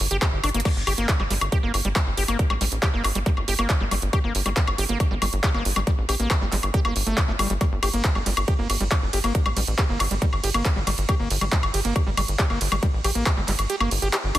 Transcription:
0.00 G1, open hi-hat
0.11 G1 G4, closed hi-hat
0.22 G4, kick, clap, closed hi-hat, high woodblock
0.33 G1
0.44 G1 D4, closed hi-hat, open hi-hat, high woodblock
0.49 closed hi-hat
0.54 G1 A#3, closed hi-hat
0.60 closed hi-hat
0.65 G3, kick, closed hi-hat, crash, high woodblock
0.76 G1
0.87 G1 G4, open hi-hat, high woodblock
0.98 G1 A#3, closed hi-hat
1.09 kick, clap, closed hi-hat
1.20 G1 G3, high woodblock
1.30 G1 G3, open hi-hat
1.41 G1, closed hi-hat, high woodblock
1.52 G4, kick, closed hi-hat
1.63 G1 A#3
1.74 G1, open hi-hat, high woodblock
1.85 G1 G3, closed hi-hat
1.96 G3, kick, clap, closed hi-hat, high woodblock
2.07 G1
2.17 G1 G4, open hi-hat
2.28 G1 A#3, closed hi-hat, high woodblock
2.39 kick, closed hi-hat
2.50 A1 G3, high woodblock
2.61 A1 G3, open hi-hat
2.72 A1, closed hi-hat
2.83 G4, kick, clap, closed hi-hat, high woodblock
2.94 G1 A#3
3.04 G1, clap, open hi-hat, high woodblock
3.15 G1 G3, closed hi-hat
3.26 G3, kick, closed hi-hat
3.37 G1, high woodblock
3.48 G1 G4, open hi-hat
3.59 G1 A#3, closed hi-hat, high woodblock
3.70 kick, clap, closed hi-hat
3.80 G1 G3
3.91 G1 G3, open hi-hat, high woodblock
4.02 G1, closed hi-hat
4.13 G4, kick, closed hi-hat, high woodblock
4.24 G1 A#3
4.35 G1, open hi-hat
4.46 G1 G3, closed hi-hat, high woodblock
4.57 G3, kick, clap, closed hi-hat
4.67 G1, high woodblock
4.78 G1 G4, open hi-hat
4.89 G1 A#3, closed hi-hat
5.00 kick, closed hi-hat, high woodblock
5.11 G1 G3
5.22 G1 G3, open hi-hat, high woodblock
5.33 G1, closed hi-hat
5.44 G4, kick, clap, closed hi-hat
5.54 G1 A#3, high woodblock
5.65 G1, open hi-hat
5.76 G1 G3, closed hi-hat, high woodblock
5.87 G3, kick, closed hi-hat
5.98 A1
6.09 A1 G4, open hi-hat, high woodblock
6.20 A1 A#3, closed hi-hat
6.30 kick, clap, closed hi-hat, high woodblock
6.41 G1 G3
6.52 G1 G3, clap, open hi-hat
6.63 G1, closed hi-hat, high woodblock
6.74 G4, kick, closed hi-hat
6.85 G1 A#3, high woodblock
6.96 G1, open hi-hat
7.07 G1 A3, closed hi-hat
7.17 G3, kick, clap, closed hi-hat, high woodblock
7.28 G1 A3
7.39 G1 G3, open hi-hat, high woodblock
7.50 G1 G3, closed hi-hat
7.61 G3, kick, closed hi-hat, high woodblock
7.72 G1
7.83 G1 G4, open hi-hat, ride, high woodblock
7.94 G1 A#3, closed hi-hat
8.04 kick, clap, closed hi-hat
8.15 G1 G3, high woodblock
8.26 G1 G3, open hi-hat, ride
8.37 G1, closed hi-hat, high woodblock
8.48 G4, kick, closed hi-hat
8.59 G1 A#3
8.70 G1, open hi-hat, ride, high woodblock
8.80 G1 G3, closed hi-hat
8.91 G3, kick, clap, closed hi-hat, high woodblock
9.02 G1
9.13 G1 G4, open hi-hat, ride
9.24 G1 A#3, closed hi-hat, high woodblock
9.35 kick, closed hi-hat
9.46 A1 G3, high woodblock
9.57 A1 G3, open hi-hat, ride
9.67 A1, closed hi-hat
9.78 G4, kick, clap, closed hi-hat, high woodblock
9.89 G1 A#3
10.00 G1, clap, open hi-hat, ride, high woodblock
10.11 G1 G3, closed hi-hat
10.22 G3, kick, closed hi-hat
10.33 G1, high woodblock
10.44 G1 G4, open hi-hat, ride
10.54 G1 A#3, closed hi-hat, high woodblock
10.65 kick, clap, closed hi-hat
10.76 G1 G3
10.87 G1 G3, open hi-hat, ride, high woodblock
10.98 G1, closed hi-hat
11.09 G4, kick, closed hi-hat, high woodblock
11.20 G1 A#3
11.30 G1, open hi-hat, ride
11.41 G1 G3, closed hi-hat, high woodblock
11.52 G3, kick, clap, closed hi-hat
11.63 G1, high woodblock
11.74 G1 G4, open hi-hat, ride
11.85 G1 A#3, closed hi-hat
11.96 kick, closed hi-hat, high woodblock
12.07 G1 G3
12.17 G1 G3, open hi-hat, ride, high woodblock
12.28 G1, closed hi-hat
12.39 G4, kick, clap, closed hi-hat
12.50 G1 A#3, high woodblock
12.61 G1, open hi-hat, ride
12.72 G1 G3, closed hi-hat, high woodblock
12.83 G3, kick, closed hi-hat
12.94 A1
13.04 A1 G4, open hi-hat, ride, high woodblock
13.15 A1 A#3, closed hi-hat
13.26 kick, clap, closed hi-hat, high woodblock
13.37 G1 G3
13.48 G1 G3, clap, open hi-hat, ride
13.59 G1, closed hi-hat, high woodblock
13.70 G4, closed hi-hat
13.80 G1 A#3, high woodblock
13.91 G1, open hi-hat, ride
14.02 G1 G4, closed hi-hat
14.13 G4, clap, closed hi-hat, high woodblock
14.24 G1
14.35 G1 D4, open hi-hat, ride, high woodblock

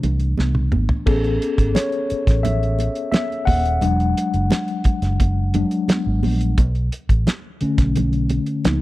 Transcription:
Already playing: E3 A3 D4
0.03 C2, closed hi-hat, muted conga, low conga
0.20 closed hi-hat
0.37 C2, snare, high conga
0.55 high tom
0.72 G#1, mid tom, high conga
0.89 floor tom
1.06 A1 B3 C#4 G#4 A4, kick, crash, muted conga
1.24 closed hi-hat
1.42 closed hi-hat
1.58 G#1, kick, closed hi-hat
1.75 C#5, snare, closed hi-hat, high conga
1.92 closed hi-hat
2.10 muted fingered electric bass stroke, closed hi-hat
2.27 A1, kick, snare, closed hi-hat
2.43 E5, closed hi-hat, muted conga, low conga
2.63 closed hi-hat
2.79 closed hi-hat, muted conga
2.95 closed hi-hat
3.12 E5, snare, closed hi-hat, high conga
3.32 closed hi-hat
3.45 D#1 F#5, kick, open hi-hat, high conga
3.65 closed hi-hat
3.81 E1 F#3 G#3 D4, closed hi-hat, muted conga
4.00 closed hi-hat
4.17 closed hi-hat
4.34 F#1, closed hi-hat
4.50 snare, closed hi-hat, high conga
4.68 closed hi-hat
4.84 muted fingered electric bass stroke, kick, closed hi-hat, muted conga
5.02 F#1, snare, closed hi-hat
5.20 kick, closed hi-hat, muted conga
5.54 F#3 G#3 D4, closed hi-hat, muted conga, low conga
5.71 closed hi-hat
5.88 snare, closed hi-hat, high conga
6.07 G#1
6.23 A#1, open hi-hat, high conga
6.41 closed hi-hat
6.58 B1, kick, closed hi-hat, muted conga
6.75 closed hi-hat
6.92 closed hi-hat
7.09 A1, kick, closed hi-hat
7.27 snare, closed hi-hat, high conga
7.61 D3 A3 C#4, muted fingered electric bass stroke, closed hi-hat
7.78 B1, kick, snare, closed hi-hat
7.96 closed hi-hat, muted conga, low conga
8.13 closed hi-hat
8.29 closed hi-hat, muted conga
8.46 closed hi-hat
8.64 C#2 F3 A#3 D#4, snare, closed hi-hat, high conga

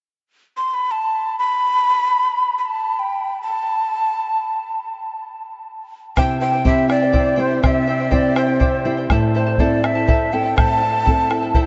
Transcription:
0.57 C6
0.74 B5
0.91 A5
1.39 B5
2.58 B5
2.66 A5
2.99 G5
3.42 A5
6.17 C3 E4 G4 C5 E5 G5, bombo rim, bombo low
6.40 E4 C5 E5 G5
6.53 E4 C5 G5
6.64 C4 E4 G4 C5 E5 G5, bombo low
6.88 E4 C5 D5 E5 G5, bombo rim
7.01 E4 C5 G5
7.12 E4 G4 C5 E5 G5, bombo rim, bombo low
7.36 C4 E4 G4 C5 E5 G5
7.40 C5
7.50 E4 C5 G5
7.62 C3 E4 G4 C5 E5 G5, bombo rim, bombo low
7.87 E4 C5 E5 G5
8.00 E4 C5 G5
8.11 C4 E4 G4 C5 D5 E5 G5, bombo low
8.35 E4 C5 E5 G5, bombo rim
8.47 E4 C5 G5
8.59 E4 G4 C5 E5 G5, bombo rim, bombo low
8.85 C4 E4 G4 C5 E5 G5
8.97 E4 C5 G5
9.10 A2 E4 A4 C5 E5 A5, bombo rim, bombo low
9.34 E4 A4 C5 E5 A5
9.46 E4 A4 A5
9.58 C4 E4 A4 C5 D5 E5 A5, bombo low
9.83 E4 A4 E5 A5, bombo rim
9.95 E4 A4 A5
10.07 E4 A4 C5 E5 A5, bombo rim, bombo low
10.32 C4 E4 A4 E5 G5 A5
10.43 E4 A4 A5
10.56 A2 E4 A4 C5 E5 A5, bombo rim, bombo low
10.81 E4 A4 E5 A5
10.92 E4 A4 A5
11.04 C4 E4 A4 C5 E5 A5, bombo low
11.30 E4 A4 E5 A5, bombo rim
11.42 E4 A4 A5, bombo rim
11.54 E4 A4 C5 E5 A5, bombo low

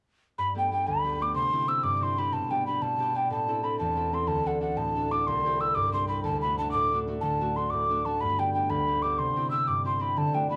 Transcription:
0.38 G2 B5
0.54 A3 B3 G4 G5
0.71 A3 B3 G4 G5
0.87 D2 B5
1.04 A3 B3 G4
1.19 A3 B3 G4 D6
1.34 C3 C6
1.52 C4 E4 G4
1.68 C4 E4 G4 E6
1.83 G2 D6
1.97 C4 D6
2.02 E4 G4 C6
2.17 C4 E4 G4 B5
2.33 B2 A5
2.50 B3 D4 G4 G5
2.67 B3 D4 G4 B5
2.82 B2 A5
2.99 B3 D4 G4
3.15 B3 D4 G4 G5
3.30 A2 A5
3.48 C4 E4 A4
3.63 C4 E4 A4 B5
3.79 E2 A5
3.96 C4 E4 A4
4.12 C4 E4 A4 C6
4.27 D2 A5
4.45 D4 F#4 A4 F#5
4.60 D4 F#4 A4 F#5
4.77 A2 A5
4.96 D4 F#4 A4
5.11 D4 F#4 A4 D6
5.27 C2 C6
5.45 C4 E4 G4
5.60 C4 E4 G4 E6
5.75 G2 D6
5.92 C4 E4 G4 C6
6.08 C4 E4 G4 B5
6.24 D2 A5
6.41 A3 D4 F#4 B5
6.58 A3 D4 F#4 A5
6.71 A2 D6
6.92 A3 D4 F#4
7.07 A3 D4 F#4
7.21 D2 A5
7.40 A3 D4 F#4
7.56 A3 D4 F#4 C6
7.70 A2 D6
7.90 A3 D4 F#4
8.05 A3 D4 F#4 A5
8.21 G2 B5
8.38 B3 D4 G4 G5
8.54 B3 D4 G4 G5
8.69 D2 B5
8.87 B3 D4 G4
9.02 B3 D4 G4 D6
9.18 C3 C6
9.36 C4 E4 G4
9.51 C4 E4 G4 E6
9.68 G2 D6
9.84 C4 E4 G4 C6
9.99 C4 E4 G4 B5
10.17 D3 A5
10.33 A3 D4 F#4 G5
10.50 A3 D4 F#4 B5

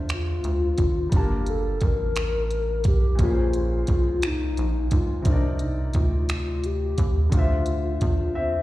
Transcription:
Already playing: E2 D3 D4 F4 C5 E5
0.09 finger snap, closed hi-hat
0.14 F4
0.44 D2, closed hi-hat
0.78 G#1, kick, closed hi-hat
1.09 G1 G3 D4, kick, closed hi-hat
1.14 F4 G4 A5
1.19 A#3
1.46 A4, closed hi-hat
1.81 A1 A#4, kick, closed hi-hat
2.16 finger snap, closed hi-hat
2.51 closed hi-hat
2.84 B1 G4, kick, closed hi-hat
3.15 A#2 A#3, kick, closed hi-hat
3.20 A#1 C#4 F4 G#4
3.25 B4
3.32 C5
3.53 closed hi-hat
3.87 C2, kick, closed hi-hat
4.22 D#4, finger snap, closed hi-hat
4.57 A#1, closed hi-hat
4.91 C#2 F4, kick, closed hi-hat
5.22 C2 C3 C4, kick, closed hi-hat
5.27 D4 A#4
5.32 D#4 D5
5.54 D4
5.59 D#4, closed hi-hat
5.93 D2 F4, kick, closed hi-hat
6.29 finger snap, closed hi-hat
6.64 G4, closed hi-hat
6.98 D#2, kick, closed hi-hat
7.29 D2 D3 D4, kick, closed hi-hat
7.34 F4 C5
7.38 E5
7.66 closed hi-hat
8.01 E2, kick, closed hi-hat
8.35 C4 E5

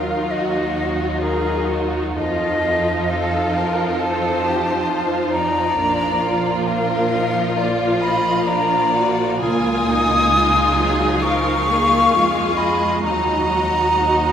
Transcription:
Already playing: D#2 F#3 D#4 F4 A#4 F5
0.30 F#4 D#5
1.21 D#4 G#4 A#4
1.69 F#4
2.16 F2 F3 D#4 F4 A4 D#5
3.09 A4 F5
3.55 A#4
3.99 A4 C5 A5
4.45 G4
4.90 F4
5.32 D#4 D5 A#5
5.78 A#1 F3 A#3 D4 F4
6.24 F4
6.68 D4 A#4 F5
7.15 D#4
7.59 F4 D5
8.01 D#5 B5
8.48 D4 D5 A#5
8.96 F#4
9.41 C#2 A#3 F4 G#5 D#6
9.88 D#4
10.33 G#3 F4
10.77 F#3 G#4
11.22 F3 A#4 F5 C#6
11.68 A#3 G#4
12.12 F2 G#3 F4 G#4
12.57 G#3 D#5 B5
13.01 D#2 D#4 D#5 A#5
13.06 F#3 F#4
13.47 D#4 F#4
13.96 F#3 D#4

